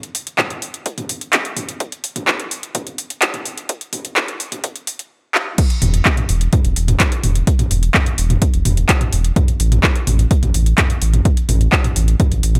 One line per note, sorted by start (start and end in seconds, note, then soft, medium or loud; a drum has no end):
0.03 closed hi-hat soft
0.15 open hi-hat loud
0.27 closed hi-hat soft
0.38 kick loud
0.38 clap loud
0.38 mid tom medium
0.50 closed hi-hat soft
0.62 open hi-hat medium
0.74 closed hi-hat soft
0.86 kick loud
0.86 closed hi-hat medium
0.98 closed hi-hat soft
0.98 mid tom medium
1.09 open hi-hat loud
1.21 closed hi-hat soft
1.33 kick loud
1.33 clap loud
1.33 closed hi-hat medium
1.45 closed hi-hat soft
1.57 mid tom medium
1.57 open hi-hat medium
1.69 closed hi-hat soft
1.80 kick loud
1.80 closed hi-hat medium
1.92 closed hi-hat soft
2.04 open hi-hat loud
2.16 closed hi-hat soft
2.16 mid tom loud
2.28 kick loud
2.28 clap loud
2.40 closed hi-hat soft
2.51 open hi-hat medium
2.63 closed hi-hat soft
2.75 kick loud
2.75 closed hi-hat medium
2.75 mid tom loud
2.87 closed hi-hat soft
2.98 open hi-hat loud
3.10 closed hi-hat soft
3.22 kick loud
3.22 clap loud
3.22 closed hi-hat medium
3.34 closed hi-hat soft
3.34 mid tom loud
3.45 open hi-hat medium
3.58 closed hi-hat soft
3.69 kick loud
3.69 closed hi-hat medium
3.81 closed hi-hat soft
3.93 mid tom medium
3.93 open hi-hat loud
4.05 closed hi-hat soft
4.16 kick loud
4.16 clap loud
4.16 closed hi-hat soft
4.28 closed hi-hat soft
4.40 open hi-hat medium
4.52 closed hi-hat soft
4.52 mid tom loud
4.64 kick loud
4.64 closed hi-hat medium
4.76 closed hi-hat soft
4.87 open hi-hat loud
4.99 closed hi-hat soft
5.35 clap medium
5.58 kick loud
5.58 closed hi-hat medium
5.58 crash loud
5.70 closed hi-hat soft
5.82 6.01 E1 loud
5.82 mid tom medium
5.82 open hi-hat loud
5.94 closed hi-hat soft
6.05 kick loud
6.05 clap loud
6.17 closed hi-hat soft
6.17 mid tom medium
6.29 6.48 E1 medium
6.29 open hi-hat loud
6.41 closed hi-hat soft
6.53 kick loud
6.53 closed hi-hat medium
6.53 mid tom medium
6.65 6.74 E1 loud
6.65 closed hi-hat soft
6.76 6.96 E1 medium
6.76 open hi-hat loud
6.88 closed hi-hat soft
6.88 mid tom medium
7.00 kick loud
7.00 clap loud
7.00 closed hi-hat medium
7.12 closed hi-hat soft
7.24 7.43 E1 medium
7.24 mid tom medium
7.24 open hi-hat loud
7.35 closed hi-hat soft
7.47 kick loud
7.47 closed hi-hat medium
7.59 closed hi-hat soft
7.59 mid tom medium
7.71 7.90 E1 loud
7.71 open hi-hat loud
7.83 closed hi-hat soft
7.94 kick loud
7.94 clap loud
7.94 mid tom medium
8.06 closed hi-hat soft
8.18 8.37 E1 medium
8.18 open hi-hat loud
8.30 closed hi-hat soft
8.30 mid tom medium
8.42 kick loud
8.42 closed hi-hat medium
8.54 8.63 E1 loud
8.54 closed hi-hat soft
8.65 8.84 E1 medium
8.65 mid tom medium
8.65 open hi-hat loud
8.77 closed hi-hat soft
8.89 kick loud
8.89 clap loud
8.89 closed hi-hat medium
9.01 closed hi-hat soft
9.01 mid tom medium
9.13 9.32 E1 medium
9.13 open hi-hat loud
9.25 closed hi-hat soft
9.36 kick loud
9.36 closed hi-hat medium
9.36 mid tom medium
9.48 closed hi-hat soft
9.60 9.79 A1 loud
9.60 open hi-hat loud
9.72 closed hi-hat soft
9.72 mid tom medium
9.83 kick loud
9.83 clap loud
9.96 closed hi-hat soft
10.07 10.26 A1 medium
10.07 mid tom loud
10.07 open hi-hat loud
10.19 closed hi-hat soft
10.31 kick loud
10.31 closed hi-hat medium
10.43 10.52 A1 loud
10.43 closed hi-hat soft
10.43 mid tom medium
10.54 10.74 A1 medium
10.54 open hi-hat loud
10.66 closed hi-hat soft
10.78 kick loud
10.78 clap loud
10.78 closed hi-hat medium
10.78 mid tom loud
10.90 closed hi-hat soft
11.02 11.21 A1 medium
11.02 open hi-hat loud
11.14 closed hi-hat soft
11.14 mid tom medium
11.25 kick loud
11.25 closed hi-hat medium
11.37 closed hi-hat soft
11.49 11.68 A1 loud
11.49 mid tom medium
11.49 open hi-hat loud
11.61 closed hi-hat soft
11.72 kick loud
11.72 clap loud
11.84 closed hi-hat soft
11.84 mid tom medium
11.96 12.15 A1 medium
11.96 open hi-hat loud
12.08 closed hi-hat soft
12.20 kick loud
12.20 closed hi-hat medium
12.20 mid tom medium
12.32 12.41 A1 loud
12.32 closed hi-hat soft
12.43 12.60 A1 medium
12.43 open hi-hat loud
12.55 closed hi-hat soft
12.55 mid tom medium